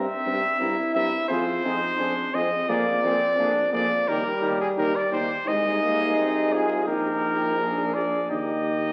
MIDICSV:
0, 0, Header, 1, 6, 480
1, 0, Start_track
1, 0, Key_signature, -3, "major"
1, 0, Tempo, 695249
1, 1858, Time_signature, 4, 2, 24, 8
1, 4259, Tempo, 718563
1, 6101, End_track
2, 0, Start_track
2, 0, Title_t, "Trumpet"
2, 0, Program_c, 0, 56
2, 0, Note_on_c, 0, 76, 124
2, 627, Note_off_c, 0, 76, 0
2, 653, Note_on_c, 0, 76, 127
2, 886, Note_off_c, 0, 76, 0
2, 890, Note_on_c, 0, 72, 124
2, 1619, Note_on_c, 0, 75, 118
2, 1629, Note_off_c, 0, 72, 0
2, 1859, Note_on_c, 0, 74, 127
2, 1869, Note_off_c, 0, 75, 0
2, 2571, Note_off_c, 0, 74, 0
2, 2575, Note_on_c, 0, 74, 127
2, 2817, Note_on_c, 0, 70, 113
2, 2828, Note_off_c, 0, 74, 0
2, 3175, Note_off_c, 0, 70, 0
2, 3184, Note_on_c, 0, 68, 105
2, 3237, Note_off_c, 0, 68, 0
2, 3300, Note_on_c, 0, 70, 121
2, 3424, Note_on_c, 0, 74, 116
2, 3435, Note_off_c, 0, 70, 0
2, 3533, Note_off_c, 0, 74, 0
2, 3537, Note_on_c, 0, 72, 122
2, 3781, Note_on_c, 0, 75, 127
2, 3791, Note_off_c, 0, 72, 0
2, 4498, Note_on_c, 0, 68, 114
2, 4508, Note_off_c, 0, 75, 0
2, 4733, Note_off_c, 0, 68, 0
2, 4736, Note_on_c, 0, 70, 114
2, 5444, Note_on_c, 0, 74, 100
2, 5454, Note_off_c, 0, 70, 0
2, 5687, Note_off_c, 0, 74, 0
2, 5691, Note_on_c, 0, 75, 110
2, 6101, Note_off_c, 0, 75, 0
2, 6101, End_track
3, 0, Start_track
3, 0, Title_t, "Flugelhorn"
3, 0, Program_c, 1, 56
3, 180, Note_on_c, 1, 70, 67
3, 288, Note_off_c, 1, 70, 0
3, 415, Note_on_c, 1, 70, 72
3, 524, Note_off_c, 1, 70, 0
3, 652, Note_on_c, 1, 70, 74
3, 761, Note_off_c, 1, 70, 0
3, 890, Note_on_c, 1, 68, 89
3, 1000, Note_off_c, 1, 68, 0
3, 1130, Note_on_c, 1, 68, 77
3, 1240, Note_off_c, 1, 68, 0
3, 1380, Note_on_c, 1, 68, 77
3, 1487, Note_off_c, 1, 68, 0
3, 1617, Note_on_c, 1, 68, 77
3, 1725, Note_off_c, 1, 68, 0
3, 1858, Note_on_c, 1, 68, 91
3, 1966, Note_off_c, 1, 68, 0
3, 2100, Note_on_c, 1, 68, 69
3, 2208, Note_off_c, 1, 68, 0
3, 2340, Note_on_c, 1, 68, 80
3, 2447, Note_off_c, 1, 68, 0
3, 2579, Note_on_c, 1, 68, 82
3, 2686, Note_off_c, 1, 68, 0
3, 2817, Note_on_c, 1, 67, 87
3, 2924, Note_off_c, 1, 67, 0
3, 3053, Note_on_c, 1, 67, 77
3, 3161, Note_off_c, 1, 67, 0
3, 3293, Note_on_c, 1, 67, 74
3, 3402, Note_off_c, 1, 67, 0
3, 3532, Note_on_c, 1, 67, 81
3, 3642, Note_off_c, 1, 67, 0
3, 3769, Note_on_c, 1, 68, 99
3, 4726, Note_on_c, 1, 67, 85
3, 4736, Note_off_c, 1, 68, 0
3, 5198, Note_off_c, 1, 67, 0
3, 5202, Note_on_c, 1, 68, 70
3, 5679, Note_on_c, 1, 67, 78
3, 5689, Note_off_c, 1, 68, 0
3, 6101, Note_off_c, 1, 67, 0
3, 6101, End_track
4, 0, Start_track
4, 0, Title_t, "Trombone"
4, 0, Program_c, 2, 57
4, 0, Note_on_c, 2, 60, 93
4, 409, Note_off_c, 2, 60, 0
4, 413, Note_on_c, 2, 64, 107
4, 892, Note_on_c, 2, 65, 100
4, 902, Note_off_c, 2, 64, 0
4, 1135, Note_off_c, 2, 65, 0
4, 1140, Note_on_c, 2, 63, 101
4, 1375, Note_on_c, 2, 62, 91
4, 1386, Note_off_c, 2, 63, 0
4, 1613, Note_off_c, 2, 62, 0
4, 1617, Note_on_c, 2, 60, 88
4, 1852, Note_off_c, 2, 60, 0
4, 1856, Note_on_c, 2, 58, 105
4, 2092, Note_off_c, 2, 58, 0
4, 2098, Note_on_c, 2, 60, 109
4, 2337, Note_on_c, 2, 62, 113
4, 2347, Note_off_c, 2, 60, 0
4, 2576, Note_on_c, 2, 58, 91
4, 2586, Note_off_c, 2, 62, 0
4, 2815, Note_off_c, 2, 58, 0
4, 2819, Note_on_c, 2, 55, 115
4, 3573, Note_off_c, 2, 55, 0
4, 3778, Note_on_c, 2, 56, 94
4, 4002, Note_off_c, 2, 56, 0
4, 4019, Note_on_c, 2, 58, 91
4, 4256, Note_off_c, 2, 58, 0
4, 4262, Note_on_c, 2, 60, 97
4, 4498, Note_on_c, 2, 65, 91
4, 4508, Note_off_c, 2, 60, 0
4, 4729, Note_on_c, 2, 63, 86
4, 4739, Note_off_c, 2, 65, 0
4, 5200, Note_on_c, 2, 62, 84
4, 5210, Note_off_c, 2, 63, 0
4, 5681, Note_off_c, 2, 62, 0
4, 5685, Note_on_c, 2, 63, 95
4, 6101, Note_off_c, 2, 63, 0
4, 6101, End_track
5, 0, Start_track
5, 0, Title_t, "French horn"
5, 0, Program_c, 3, 60
5, 178, Note_on_c, 3, 60, 66
5, 287, Note_off_c, 3, 60, 0
5, 414, Note_on_c, 3, 60, 69
5, 523, Note_off_c, 3, 60, 0
5, 655, Note_on_c, 3, 60, 78
5, 764, Note_off_c, 3, 60, 0
5, 894, Note_on_c, 3, 60, 77
5, 1003, Note_off_c, 3, 60, 0
5, 1137, Note_on_c, 3, 60, 77
5, 1246, Note_off_c, 3, 60, 0
5, 1377, Note_on_c, 3, 60, 74
5, 1486, Note_off_c, 3, 60, 0
5, 1615, Note_on_c, 3, 60, 77
5, 1723, Note_off_c, 3, 60, 0
5, 1856, Note_on_c, 3, 58, 90
5, 1964, Note_off_c, 3, 58, 0
5, 2095, Note_on_c, 3, 58, 73
5, 2203, Note_off_c, 3, 58, 0
5, 2336, Note_on_c, 3, 58, 81
5, 2444, Note_off_c, 3, 58, 0
5, 2574, Note_on_c, 3, 58, 76
5, 2682, Note_off_c, 3, 58, 0
5, 2818, Note_on_c, 3, 63, 86
5, 2925, Note_off_c, 3, 63, 0
5, 3055, Note_on_c, 3, 63, 81
5, 3164, Note_off_c, 3, 63, 0
5, 3292, Note_on_c, 3, 63, 80
5, 3401, Note_off_c, 3, 63, 0
5, 3533, Note_on_c, 3, 63, 79
5, 3642, Note_off_c, 3, 63, 0
5, 3774, Note_on_c, 3, 63, 99
5, 4702, Note_off_c, 3, 63, 0
5, 4727, Note_on_c, 3, 63, 82
5, 5192, Note_off_c, 3, 63, 0
5, 5197, Note_on_c, 3, 62, 77
5, 5683, Note_on_c, 3, 63, 77
5, 5693, Note_off_c, 3, 62, 0
5, 6101, Note_off_c, 3, 63, 0
5, 6101, End_track
6, 0, Start_track
6, 0, Title_t, "Tuba"
6, 0, Program_c, 4, 58
6, 178, Note_on_c, 4, 43, 91
6, 286, Note_off_c, 4, 43, 0
6, 415, Note_on_c, 4, 43, 88
6, 524, Note_off_c, 4, 43, 0
6, 657, Note_on_c, 4, 43, 92
6, 765, Note_off_c, 4, 43, 0
6, 898, Note_on_c, 4, 41, 102
6, 1006, Note_off_c, 4, 41, 0
6, 1140, Note_on_c, 4, 41, 86
6, 1248, Note_off_c, 4, 41, 0
6, 1377, Note_on_c, 4, 41, 81
6, 1485, Note_off_c, 4, 41, 0
6, 1616, Note_on_c, 4, 41, 95
6, 1724, Note_off_c, 4, 41, 0
6, 1858, Note_on_c, 4, 41, 100
6, 1966, Note_off_c, 4, 41, 0
6, 2097, Note_on_c, 4, 41, 100
6, 2205, Note_off_c, 4, 41, 0
6, 2336, Note_on_c, 4, 41, 93
6, 2444, Note_off_c, 4, 41, 0
6, 2578, Note_on_c, 4, 41, 96
6, 2685, Note_off_c, 4, 41, 0
6, 2812, Note_on_c, 4, 39, 95
6, 2921, Note_off_c, 4, 39, 0
6, 3048, Note_on_c, 4, 39, 90
6, 3158, Note_off_c, 4, 39, 0
6, 3293, Note_on_c, 4, 39, 91
6, 3402, Note_off_c, 4, 39, 0
6, 3533, Note_on_c, 4, 39, 86
6, 3642, Note_off_c, 4, 39, 0
6, 3775, Note_on_c, 4, 36, 86
6, 4728, Note_on_c, 4, 34, 95
6, 4738, Note_off_c, 4, 36, 0
6, 5683, Note_off_c, 4, 34, 0
6, 5687, Note_on_c, 4, 39, 78
6, 6101, Note_off_c, 4, 39, 0
6, 6101, End_track
0, 0, End_of_file